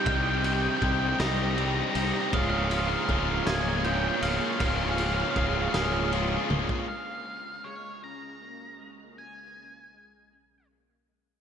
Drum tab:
RD |x-x-x-x-x-x-|x-x-x-x-x-x-|x-x-x-x-x---|------------|
SD |------o-----|------o-----|------o-----|------------|
T1 |------------|------------|----------o-|------------|
BD |o---o-------|o---o-------|o---o------o|------------|

RD |------------|
SD |------------|
T1 |------------|
BD |------------|